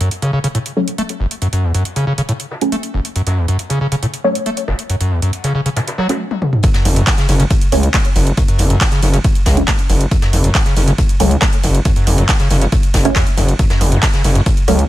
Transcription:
0.01 F#2, closed hi-hat
0.11 closed hi-hat
0.22 C#3, snare, closed hi-hat
0.33 C#3, closed hi-hat
0.44 C#3, closed hi-hat
0.55 A2, closed hi-hat
0.66 closed hi-hat
0.77 F#3 A3 C#4, closed hi-hat
0.88 closed hi-hat
0.98 A3, closed hi-hat
1.09 closed hi-hat
1.20 F#1, closed hi-hat
1.31 closed hi-hat
1.42 F#2, closed hi-hat
1.53 F#2, closed hi-hat
1.64 E2, closed hi-hat
1.75 F#2, closed hi-hat
1.85 closed hi-hat, open hi-hat
1.96 C#3, snare, closed hi-hat
2.07 C#3, closed hi-hat
2.18 C#3, closed hi-hat
2.29 A2, closed hi-hat
2.40 closed hi-hat
2.51 snare, closed hi-hat
2.61 F#3 A3 C#4, closed hi-hat
2.72 A3, closed hi-hat
2.83 closed hi-hat
2.94 F#1, closed hi-hat
3.05 closed hi-hat
3.15 F#2, closed hi-hat
3.27 F#2, snare, closed hi-hat
3.37 E2, closed hi-hat
3.48 F#2, closed hi-hat
3.59 closed hi-hat
3.69 C#3, snare, closed hi-hat
3.81 C#3, closed hi-hat
3.92 C#3, closed hi-hat
4.03 A2, closed hi-hat
4.14 closed hi-hat
4.24 F#3 A3 C#4, closed hi-hat
4.35 closed hi-hat
4.46 A3, closed hi-hat
4.57 closed hi-hat
4.68 F#1, snare, closed hi-hat
4.79 closed hi-hat
4.89 F#2, closed hi-hat
5.01 F#2, closed hi-hat
5.11 E2, closed hi-hat
5.22 F#2, closed hi-hat
5.33 closed hi-hat, open hi-hat
5.44 C#3, snare, closed hi-hat
5.55 C#3, closed hi-hat
5.66 C#3, closed hi-hat
5.76 A2, snare, closed hi-hat
5.87 snare, closed hi-hat
5.98 F#3, snare, closed hi-hat
6.09 F#3 A3 C#4, snare, closed hi-hat
6.31 high tom
6.42 mid tom
6.53 mid tom
6.63 F#2, kick, closed hi-hat, ride
6.74 F#2, snare, closed hi-hat
6.85 F#1 E2, closed hi-hat, open hi-hat
6.96 F#2, closed hi-hat
7.06 kick, snare, clap, closed hi-hat, ride
7.18 C#3, snare, closed hi-hat
7.29 F#1 C#3, closed hi-hat, open hi-hat
7.39 C#3, closed hi-hat
7.50 A2, kick, closed hi-hat, ride
7.61 closed hi-hat
7.72 C#2 F#3 A3 C#4, closed hi-hat, open hi-hat
7.83 closed hi-hat
7.94 A3, kick, snare, clap, closed hi-hat, ride
8.05 closed hi-hat
8.16 F#1, closed hi-hat, open hi-hat
8.27 closed hi-hat
8.37 F#2, kick, closed hi-hat, ride
8.48 F#2, closed hi-hat
8.58 F#1 E2, closed hi-hat, open hi-hat
8.70 F#2, closed hi-hat
8.81 kick, snare, clap, closed hi-hat, open hi-hat, ride
8.92 C#3, snare, closed hi-hat
9.03 F#1 C#3, closed hi-hat, open hi-hat
9.14 C#3, closed hi-hat
9.24 A2, kick, closed hi-hat, ride
9.35 closed hi-hat
9.46 C#2, kick, snare, closed hi-hat, open hi-hat
9.57 F#3 A3 C#4, closed hi-hat
9.67 A3, kick, snare, clap, closed hi-hat, ride
9.79 closed hi-hat
9.90 F#1, closed hi-hat, open hi-hat
10.01 closed hi-hat
10.11 F#2, kick, closed hi-hat, ride
10.22 F#2, snare, closed hi-hat
10.33 F#1 E2, closed hi-hat, open hi-hat
10.44 F#2, closed hi-hat
10.54 kick, snare, clap, closed hi-hat, ride
10.66 C#3, snare, closed hi-hat
10.77 F#1 C#3, closed hi-hat, open hi-hat
10.87 C#3, closed hi-hat
10.98 A2, kick, closed hi-hat, ride
11.09 closed hi-hat
11.20 C#2 F#3 A3 C#4, closed hi-hat, open hi-hat
11.31 closed hi-hat
11.41 A3, kick, snare, clap, closed hi-hat, ride
11.53 closed hi-hat
11.63 F#1, closed hi-hat, open hi-hat
11.75 closed hi-hat
11.85 F#2, kick, closed hi-hat, ride
11.96 F#2, closed hi-hat
12.07 F#1 E2, open hi-hat
12.18 F#2, closed hi-hat
12.28 kick, snare, clap, closed hi-hat, open hi-hat, ride
12.40 C#3, snare, closed hi-hat
12.50 F#1 C#3, closed hi-hat, open hi-hat
12.61 C#3, closed hi-hat
12.72 A2, kick, closed hi-hat, ride
12.83 closed hi-hat
12.94 F#1, kick, snare, closed hi-hat, open hi-hat
13.05 F#3 A3 C#4, closed hi-hat
13.16 E2, kick, snare, clap, closed hi-hat, ride
13.27 closed hi-hat
13.37 F#1 F#2, closed hi-hat, open hi-hat
13.48 closed hi-hat
13.59 F#2, kick, closed hi-hat, ride
13.70 F#2, snare, closed hi-hat
13.81 F#1 E2, closed hi-hat, open hi-hat
13.92 F#2, closed hi-hat
14.02 kick, snare, clap, closed hi-hat, ride
14.14 C#3, snare, closed hi-hat
14.24 F#1 C#3, closed hi-hat, open hi-hat
14.35 F#2, closed hi-hat
14.46 A2, kick, closed hi-hat, ride
14.57 closed hi-hat
14.68 C#2 F#3 A3 C#4, closed hi-hat, open hi-hat
14.79 closed hi-hat

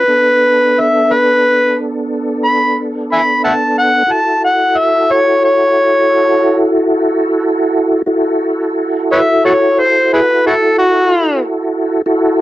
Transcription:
Already playing: B4
0.08 B3 D4 A4
0.80 E5
1.12 B4
2.44 B5
3.13 E5 G#5 B5
3.44 E5 F#5 A5
3.78 F#5
4.07 E4 F#4 A4
4.11 A5
4.44 F#5
4.78 E5
5.12 C#5
5.44 C#5
8.06 E4 F#4 A4
9.12 B4 C#5 E5
9.45 F#4 A4 C#5
9.79 C5
10.13 E4 G#4 B4
10.47 E4 F#4 A4
10.79 F#4
12.06 E4 F#4 A4

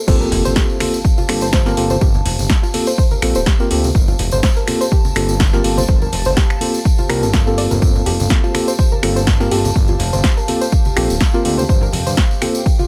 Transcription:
0.07 G1 A#3 C4 F4 G4 A4 C5 F5 A5, kick, crash, tambourine, impact
0.20 A#4, tambourine, low conga
0.32 F1, open hi-hat, low conga
0.45 G1 C5, tambourine, high conga
0.56 G4, kick, snare, tambourine
0.69 tambourine
0.80 A#3 C4 F4 G4 A4, finger snap, open hi-hat, high conga
0.94 tambourine
1.05 kick, tambourine
1.18 F4, tambourine, high conga
1.28 G1 A#3 C4 F4 G4 A4, finger snap, open hi-hat
1.41 C5, tambourine
1.53 C5, kick, snare, tambourine
1.66 A#3 C4 F4 G4 A#4, snare, tambourine
1.77 G1 A#3 C4 F4 G4 A4, open hi-hat
1.90 C5, tambourine, high conga
2.01 G1 G4, kick, tambourine
2.14 tambourine, low conga
2.25 F1, open hi-hat, low conga
2.39 G1, tambourine, high conga
2.50 kick, snare, tambourine
2.63 F4, tambourine
2.74 A#3 C4 F4 G4 A4, open hi-hat, high conga
2.87 C5, tambourine
2.98 C5, kick, tambourine
3.11 A#4, tambourine, high conga
3.22 A#1 A#3 C4 F4 G4 A4, finger snap, open hi-hat
3.35 D1 C5, tambourine
3.46 G4, kick, snare, tambourine
3.60 A#3 C4 F4 G4 A#4, tambourine
3.70 D2 A#3 C4 F4 G4 A4, open hi-hat
3.84 tambourine, high conga
3.95 G1 A5, kick, tambourine
4.08 F4, tambourine, low conga
4.19 F1, open hi-hat, low conga
4.31 G1 C5, tambourine, high conga
4.43 C5, kick, snare, tambourine
4.56 A#4, tambourine
4.67 A#3 C4 F4 G4 A4, finger snap, open hi-hat, high conga
4.81 C5, tambourine
4.92 G4, kick
5.04 tambourine, high conga
5.16 G1 A#3 C4 F4 G4 A4, finger snap, open hi-hat
5.29 tambourine
5.40 kick, snare, tambourine
5.53 A#3 C4 F4 G4 A#4, snare, tambourine
5.64 G1 A#3 C4 F4 G4 A4, open hi-hat
5.77 C5, tambourine, high conga
5.88 G1 C5, kick, tambourine
6.02 A#4, tambourine, low conga
6.12 F1, open hi-hat, low conga
6.25 G1 C5, tambourine, high conga
6.37 G4, kick, snare, tambourine
6.50 finger snap, tambourine
6.60 A#3 C4 F4 G4 A4, open hi-hat, high conga
6.74 tambourine
6.85 kick, tambourine
6.98 F4, tambourine, high conga
7.09 C2 A#3 C4 F4 G4 A#4, finger snap, open hi-hat
7.23 G1 A4, tambourine
7.34 F4, kick, snare, tambourine
7.46 A#3 C4 F4 G4 A4, tambourine
7.58 D5, open hi-hat
7.71 G1 A#4, tambourine, high conga
7.82 G1 A5, kick, tambourine
7.96 tambourine, low conga
8.06 F1 G4, open hi-hat, low conga
8.20 G1, tambourine, high conga
8.30 kick, snare, tambourine
8.44 F4, tambourine
8.54 A#3 C4 F4 G4 A4, finger snap, open hi-hat, high conga
8.68 C5, tambourine
8.79 C5, kick, tambourine
8.92 A#4, tambourine, high conga
9.03 G1 A#3 C4 F4 G4 A4, finger snap, open hi-hat
9.16 C5, tambourine
9.27 kick, snare, tambourine
9.40 A#3 C4 F4 G4 A#4, snare, tambourine
9.51 G1 A#3 C4 F4 G4 A4, open hi-hat
9.64 tambourine, high conga
9.76 G1, kick, tambourine
9.88 F4, tambourine, low conga
9.99 F1, open hi-hat, low conga
10.13 G1 C5, tambourine, high conga
10.24 C5, kick, snare, tambourine
10.37 A#4, tambourine
10.48 A#3 C4 F4 G4 A4, open hi-hat, high conga
10.61 C5, tambourine
10.72 kick, tambourine
10.85 tambourine, high conga
10.96 A#1 A#3 C4 F4 G4 A4, finger snap, open hi-hat
11.10 D1, tambourine
11.21 kick, snare, tambourine
11.34 A#3 C4 F4 G4 A#4, tambourine
11.45 D2 A#3 C4 F4 G4 A4, open hi-hat
11.58 C5, tambourine, high conga
11.69 G1 C5 G5, kick, tambourine
11.81 A#4, tambourine, low conga
11.93 F1, open hi-hat, low conga
12.06 G1 C5, tambourine, high conga
12.17 kick, snare, tambourine
12.31 tambourine
12.42 A#3 C4 F4 G4 A4, finger snap, open hi-hat, high conga
12.55 tambourine
12.66 kick, tambourine
12.79 F4, tambourine, high conga

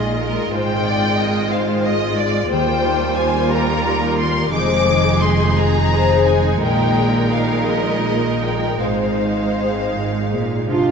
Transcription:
Already playing: A#1 A#2 F3 G#3 D#4 F4 G#4 C5 D#5
0.19 F4 A#4
0.52 G#1 G#2 G#3 C5 G5
0.85 G#3 D5
1.18 D#4 D#5
1.50 F4 C5 F5
1.84 G#4 D#5
2.18 F4 D5
2.50 D#2 D#3 G3 F4 C5 G5
2.85 D#4
3.16 F4 G#5
3.51 A#4 A#5
3.87 F5
4.18 A#4 C6
4.53 F1 F2 F3 G#3 D#4 G#4 D6
4.88 D#3
5.21 F4 C6
5.57 G#4 A#5
5.92 C5
6.27 G#4 G#5
6.61 A#1 A#2 A#4 G5
6.97 G#3
7.32 A#3 F5
7.67 F4 D#5
8.06 G#4
8.44 F4 G5
8.81 G#1 G#2 G#3 D#4 C5 F5
9.20 G#3
9.56 C4
9.93 G#2 F4
10.30 A#2 G#4
10.67 C3 D4 F4 F5
10.87 G2

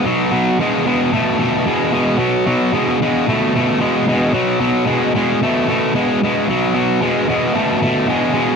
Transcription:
0.05 B2 F#3
0.32 B2 F#3
0.59 B2 G#3
0.87 B2 G#3
1.13 B2 A3
1.39 B2 A3
1.66 B2 G#3
1.92 B2 G#3
2.19 B2 F#3
2.46 B2 F#3
2.73 B2 G#3
3.02 B2 G#3
3.27 B2 A3
3.55 B2 A3
3.80 B2 G#3
4.08 B2 G#3
4.34 B2 F#3
4.61 B2 F#3
4.86 B2 G#3
5.15 B2 G#3
5.42 B2 A3
5.68 B2 A3
5.95 B2 G#3
6.23 B2 G#3
6.49 B2 F#3
6.75 B2 F#3
7.01 B2 G#3
7.29 B2 G#3
7.54 B2 A3
7.82 B2 A3
8.09 B2 G#3
8.35 B2 G#3

